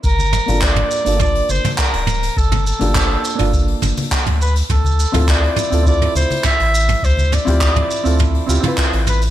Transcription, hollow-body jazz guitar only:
X:1
M:4/4
L:1/16
Q:1/4=103
K:Gm
V:1 name="Hollow-body jazz guitar"
z3 [B,DFA]4 [B,DFA] [B,DFa]8- | [B,DFa]3 [B,DFG]4 [B,DFA]6- [B,DFA] z2 | z3 [C=EFA]4 [CEFA] [CEFA]8- | [C=EFA]3 [CEFG]4 [CEFA]3 [CEFG] [CEF=B]4- [CEFB] |]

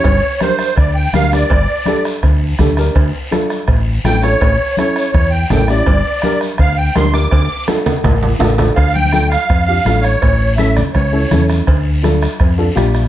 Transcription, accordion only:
X:1
M:4/4
L:1/8
Q:1/4=165
K:Dm
V:1 name="Accordion"
^c2 =c2 d g f d- | d3 z4 z | z6 g ^c- | ^c2 c2 c g g d- |
d3 z f g c' d' | d'2 z6 | f g2 f2 f2 ^c- | ^c2 e d c3 z |
z8 |]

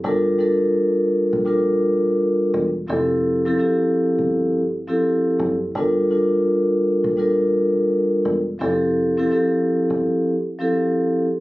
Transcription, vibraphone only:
X:1
M:4/4
L:1/16
Q:"Swing 16ths" 1/4=84
K:Gdor
V:1 name="Vibraphone"
[G,DFAB]2 [G,DFAB]6 [G,DFAB]6 z2 | [F,CEGA]3 [F,CEGA] [F,CEGA]6 z [F,CEGA]4 z | [G,DFAB]2 [G,DFAB]6 [G,DFAB]6 z2 | [F,CEGA]3 [F,CEGA] [F,CEGA]6 z [F,CEGA]4 z |]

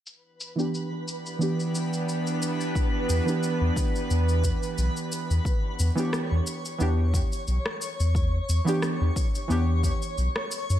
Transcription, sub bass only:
X:1
M:4/4
L:1/16
Q:"Swing 16ths" 1/4=89
K:Edor
V:1 name="Sub bass" clef=bass
z16 | z2 E,, z2 E,, z2 E,,2 z2 B,,, z2 E,, | z2 E,, z2 E,, z2 E,,2 z2 B,,, z2 E,,- | E,, z E,, z2 E,, z2 E,,2 z2 B,,, z2 F,, |]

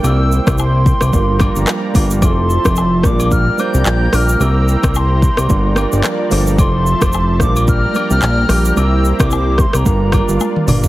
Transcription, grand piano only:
X:1
M:4/4
L:1/16
Q:"Swing 16ths" 1/4=110
K:Gdor
V:1 name="Grand piano"
[G,B,CEB]6 z2 [G,B,DFB]2 [G,B,DFB]2 z2 [G,B,DFB]2 | [F,A,CE_A=A]6 [G,B,DFB]4 [G,B,DFc]2 z2 [G,B,DFB]2 | [G,B,CEB]6 z2 [G,B,DFB]2 [G,B,DFBg]2 z d [G,B,DFAc]2 | [F,A,CEA]6 [G,B,DFB]4 [G,B,DFB]2 z2 [G,B,DFG]2 |
[G,B,CEB]6 z2 [G,B,DFB]2 [G,B,DFB]2 z2 [G,B,DFB]2 |]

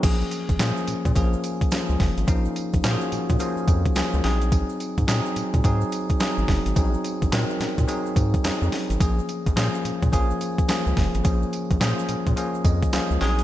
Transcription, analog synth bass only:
X:1
M:4/4
L:1/16
Q:"Swing 16ths" 1/4=107
K:Bbm
V:1 name="Analog synth bass" clef=bass
B,,,2 z B,,, B,, z B,, B,, B,,,2 z3 D,, G,,, A,,, | B,,,2 z B,,, B,, z B,, B,, z2 F,,2 D,, D,, B,,,2- | B,,,2 z A,, B,, z B,, B,, A,,2 z3 A,,, G,,, A,,, | B,,,2 z B,,, B,, z B,, B,, z2 A,,2 F,, F,, z A,,, |
B,,,2 z B,,, B,, z B,, B,, B,,,2 z3 D,, G,,, A,,, | B,,,2 z B,,, B,, z B,, B,, z2 F,,2 D,, D,, B,,,2 |]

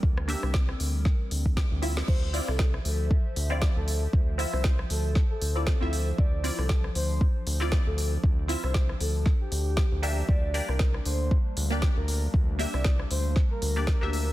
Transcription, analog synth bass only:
X:1
M:4/4
L:1/16
Q:"Swing 16ths" 1/4=117
K:Dm
V:1 name="Analog synth bass" clef=bass
D,,2 z C,,2 z D,,2 z2 D,,2 z D,,2 z | D,,2 z C,,2 z D,,2 z2 D,,2 z D,,2 z | D,,2 z C,,2 z D,,2 z2 D,,2 z D,,2 z | D,,2 z C,,2 z D,,2 z2 D,,2 z D,,2 z |
D,,2 z C,,2 z D,,2 z2 D,,2 z D,,2 z | D,,2 z C,,2 z D,,2 z2 D,,2 z D,,2 z | D,,2 z C,,2 z D,,2 z2 D,,2 z D,,2 z |]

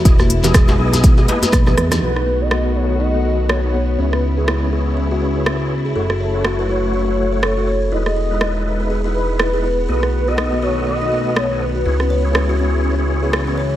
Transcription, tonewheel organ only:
X:1
M:4/4
L:1/16
Q:"Swing 16ths" 1/4=122
K:Bmix
V:1 name="Tonewheel organ"
[B,EGd] z2 [B,EGd]3 [B,EGd]3 [B,EGd] [B,EGd] [B,EGd] z [B,EGd] z2 | [B,FAd] z2 [B,FAd]3 [B,FAd]3 [B,FAd]4 [B,FAd] z2 | [B,EGc] z2 [B,EGc]3 [B,EGc]3 [B,EGc]4 [B,EGc] z2 | [A,EFc] z2 [A,EFc]3 [A,EFc]3 [A,EFc]4 [A,EFc] z2 |
[G,DEB] z2 [G,DEB]3 [G,DEB]3 [G,DEB]4 [G,DEB] z2 | [B,FAd] z2 [B,FAd]3 [B,FAd]3 [B,FAd]4 [B,FAd] z2 | [B,EGc] z2 [B,EGc]3 [B,EGc]3 [B,EGc]4 [B,EGc] z2 |]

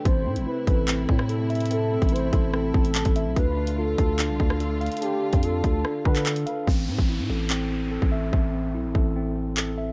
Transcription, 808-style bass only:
X:1
M:4/4
L:1/16
Q:1/4=145
K:Am
V:1 name="808-style bass" clef=bass
A,,,2 A,, A,,, z2 A,,,4 A,,6- | A,,3 A,,,3 A,,,4 A,,,3 A,,,2 B,,, | D,,6 D,,3 C,, D,,4- D,, z | z3 F,,3 D,,2 z2 D,4 z2 |
A,,,2 A,, A,,,2 A,, A,,,6- A,,, A,,,3 | A,,,4 B,,, A,,, A,,,8- A,,,2 |]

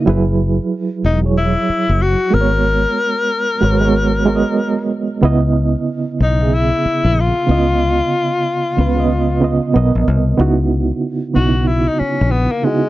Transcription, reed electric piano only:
X:1
M:4/4
L:1/16
Q:"Swing 16ths" 1/4=93
K:C#dor
V:1 name="Reed electric piano"
[F,EGB]6 z [F,EGc]6- [F,EGc] [G,B,FA^Bc]2- | [G,B,FA^Bc]4- [G,=B,FA^Bc] z [G,FA=Bc] [G,B,FAc]3 [G,B,FAcd]4- [G,B,FAcd] z | [C,B,Ed]6 z [C,B,Ge]6- [C,B,Ge] [C,B,E^Ed]2- | [C,B,E^Ed]4- [C,B,=E^Ed] z [C,B,EB] [C,B,Ed]3 [C,B,Ed]2 [B,,B,Ad]4 |
[C,B,DEF]4- [C,B,DEF] z [C,B,DEF]6- [C,B,DEF] z [C,B,DEF]2 |]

